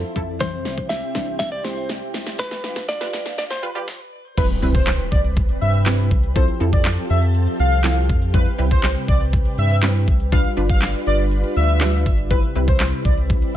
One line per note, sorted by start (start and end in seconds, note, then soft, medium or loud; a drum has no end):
0.00 0.39 F3 medium
0.00 0.37 C4 medium
0.00 2.35 E4 medium
0.00 0.39 A4 medium
0.16 0.67 F2 loud
0.16 0.32 F3 medium
0.16 0.32 E4 medium
0.16 0.32 A4 medium
0.16 kick medium
0.40 2.37 C3 medium
0.40 0.88 E3 medium
0.40 2.37 C4 medium
0.40 0.89 C4 medium
0.40 3.84 G4 medium
0.40 0.89 C5 medium
0.40 kick loud
0.40 snare medium
0.40 closed hi-hat medium
0.65 1.02 C2 medium
0.65 snare medium
0.65 closed hi-hat medium
0.78 kick loud
0.89 1.36 E5 loud
0.89 snare medium
0.89 closed hi-hat medium
1.15 1.43 C2 medium
1.15 1.79 E3 medium
1.15 1.79 C4 medium
1.15 1.79 D4 medium
1.15 kick medium
1.15 snare loud
1.15 closed hi-hat medium
1.39 1.51 E5 loud
1.39 kick loud
1.39 snare medium
1.39 closed hi-hat medium
1.52 1.61 C2 medium
1.52 1.64 D5 medium
1.64 2.02 C2 medium
1.64 1.89 C5 medium
1.64 snare loud
1.64 closed hi-hat medium
1.89 snare loud
1.89 closed hi-hat loud
2.14 2.65 C2 loud
2.14 snare loud
2.14 closed hi-hat medium
2.27 snare loud
2.39 3.86 G3 medium
2.39 3.86 D4 medium
2.39 3.86 F4 medium
2.39 2.88 B4 loud
2.39 kick loud
2.39 snare loud
2.39 closed hi-hat medium
2.51 snare loud
2.64 3.01 G1 medium
2.64 snare loud
2.64 closed hi-hat medium
2.76 kick loud
2.76 snare loud
2.89 3.37 D5 loud
2.89 snare loud
2.89 closed hi-hat medium
3.01 3.41 G3 medium
3.01 3.41 F4 medium
3.01 3.41 B4 medium
3.01 snare loud
3.13 3.41 G1 medium
3.13 snare loud
3.13 closed hi-hat medium
3.26 snare loud
3.38 3.43 D5 loud
3.38 snare loud
3.38 closed hi-hat medium
3.50 3.60 G1 medium
3.50 3.63 C5 medium
3.50 snare loud
3.63 3.82 G1 medium
3.63 3.71 G3 medium
3.63 3.71 F4 medium
3.63 3.71 B4 loud
3.63 3.88 B4 medium
3.63 closed hi-hat medium
3.75 3.88 G3 medium
3.75 3.88 F4 medium
3.75 3.88 G4 loud
3.88 kick loud
3.88 snare medium
4.37 6.34 C3 medium
4.37 6.34 G3 medium
4.37 4.53 G3 medium
4.37 4.53 C4 medium
4.37 4.54 E4 medium
4.37 10.28 G4 medium
4.37 4.46 B4 loud
4.37 4.54 B4 loud
4.37 kick loud
4.37 closed hi-hat medium
4.37 crash loud
4.37 impact medium
4.50 closed hi-hat medium
4.62 4.99 C2 medium
4.62 5.26 G3 medium
4.62 5.26 C4 medium
4.62 5.26 E4 medium
4.62 5.26 B4 medium
4.62 closed hi-hat medium
4.74 4.92 C5 medium
4.74 kick loud
4.74 closed hi-hat medium
4.87 snare medium
4.87 clap loud
4.87 closed hi-hat medium
4.99 closed hi-hat medium
5.11 5.49 C2 medium
5.11 5.20 D5 medium
5.11 kick medium
5.11 closed hi-hat medium
5.25 closed hi-hat medium
5.37 kick loud
5.37 closed hi-hat medium
5.49 closed hi-hat medium
5.61 6.13 G2 medium
5.61 5.79 E5 medium
5.61 closed hi-hat medium
5.74 closed hi-hat medium
5.86 6.18 G3 medium
5.86 6.18 C4 medium
5.86 6.18 E4 medium
5.86 6.18 B4 medium
5.86 snare loud
5.86 clap loud
5.86 closed hi-hat loud
5.99 closed hi-hat medium
6.11 6.48 C2 loud
6.11 kick medium
6.11 closed hi-hat medium
6.23 closed hi-hat medium
6.35 6.52 F3 medium
6.35 8.32 F3 medium
6.35 6.52 C4 medium
6.35 8.32 C4 medium
6.35 6.52 E4 medium
6.35 6.52 A4 medium
6.35 8.32 A4 medium
6.35 6.44 C5 loud
6.35 kick loud
6.35 closed hi-hat medium
6.48 closed hi-hat medium
6.60 6.98 F2 medium
6.60 7.24 F3 medium
6.60 7.24 C4 medium
6.60 7.24 E4 medium
6.60 7.24 A4 medium
6.60 closed hi-hat medium
6.73 6.90 D5 medium
6.73 kick loud
6.73 closed hi-hat medium
6.85 snare medium
6.85 clap loud
6.85 closed hi-hat medium
6.98 closed hi-hat medium
7.10 7.47 F2 medium
7.10 7.19 E5 medium
7.10 closed hi-hat medium
7.23 closed hi-hat soft
7.35 closed hi-hat medium
7.47 closed hi-hat medium
7.59 8.11 C2 medium
7.59 7.95 F5 medium
7.59 closed hi-hat medium
7.72 closed hi-hat soft
7.84 8.16 F3 medium
7.84 8.16 C4 medium
7.84 8.16 E4 medium
7.84 8.17 A4 medium
7.84 snare loud
7.84 clap loud
7.84 closed hi-hat loud
7.97 closed hi-hat medium
8.09 8.47 F2 loud
8.09 kick medium
8.09 closed hi-hat medium
8.22 closed hi-hat medium
8.34 10.30 C3 medium
8.34 8.50 G3 medium
8.34 12.27 G3 medium
8.34 8.50 C4 medium
8.34 8.50 E4 medium
8.34 10.30 B4 medium
8.34 8.50 B4 medium
8.34 8.43 B4 loud
8.34 kick loud
8.34 closed hi-hat medium
8.46 closed hi-hat medium
8.58 8.96 C2 medium
8.58 9.23 G3 medium
8.58 9.23 C4 medium
8.58 9.23 E4 medium
8.58 9.23 B4 medium
8.58 closed hi-hat medium
8.71 8.89 C5 medium
8.71 kick loud
8.71 closed hi-hat medium
8.83 snare medium
8.83 clap loud
8.83 closed hi-hat loud
8.96 closed hi-hat medium
9.08 9.46 C2 loud
9.08 9.17 D5 medium
9.08 kick loud
9.08 closed hi-hat medium
9.21 closed hi-hat soft
9.33 kick loud
9.33 closed hi-hat medium
9.45 closed hi-hat medium
9.58 10.09 G2 loud
9.58 9.76 E5 medium
9.58 closed hi-hat medium
9.70 closed hi-hat medium
9.83 10.15 G3 medium
9.83 10.15 C4 medium
9.83 10.15 E4 medium
9.83 10.15 B4 medium
9.83 snare loud
9.83 clap loud
9.83 closed hi-hat loud
9.95 closed hi-hat medium
10.08 10.45 C2 loud
10.08 kick medium
10.08 closed hi-hat medium
10.20 closed hi-hat medium
10.32 10.48 G3 medium
10.32 12.29 D4 medium
10.32 10.48 D4 medium
10.32 12.29 F4 medium
10.32 10.48 F4 medium
10.32 12.29 B4 medium
10.32 10.48 B4 medium
10.32 10.41 F5 loud
10.32 kick loud
10.32 closed hi-hat medium
10.45 closed hi-hat medium
10.57 10.94 G1 medium
10.57 11.21 G3 medium
10.57 11.21 D4 medium
10.57 11.21 F4 medium
10.57 11.21 B4 medium
10.57 closed hi-hat medium
10.70 10.87 F5 medium
10.70 kick loud
10.70 closed hi-hat medium
10.82 snare medium
10.82 clap loud
10.82 closed hi-hat medium
10.94 closed hi-hat medium
11.07 11.44 G1 medium
11.07 11.16 D5 medium
11.07 closed hi-hat medium
11.19 closed hi-hat medium
11.31 closed hi-hat medium
11.44 closed hi-hat medium
11.56 12.08 D2 medium
11.56 11.91 E5 medium
11.56 closed hi-hat medium
11.69 closed hi-hat soft
11.81 12.13 G3 medium
11.81 12.13 D4 medium
11.81 12.13 F4 medium
11.81 12.13 B4 medium
11.81 snare loud
11.81 clap loud
11.81 closed hi-hat loud
11.94 closed hi-hat medium
12.06 12.43 G1 loud
12.06 kick medium
12.06 open hi-hat medium
12.18 closed hi-hat medium
12.30 13.57 C3 medium
12.30 13.57 G3 medium
12.30 12.47 G3 medium
12.30 12.47 C4 medium
12.30 13.57 E4 medium
12.30 12.47 E4 medium
12.30 13.57 B4 medium
12.30 12.39 B4 loud
12.30 12.47 B4 medium
12.30 kick loud
12.30 closed hi-hat medium
12.43 closed hi-hat medium
12.55 12.93 C2 medium
12.55 13.19 G3 medium
12.55 13.19 C4 medium
12.55 13.20 E4 medium
12.55 13.20 B4 medium
12.55 closed hi-hat medium
12.68 12.85 C5 medium
12.68 kick loud
12.68 closed hi-hat medium
12.80 snare medium
12.80 clap loud
12.80 closed hi-hat loud
12.92 closed hi-hat medium
13.05 13.42 C2 medium
13.05 13.14 D5 medium
13.05 kick loud
13.05 closed hi-hat medium
13.18 closed hi-hat medium
13.30 kick loud
13.30 closed hi-hat medium
13.42 closed hi-hat medium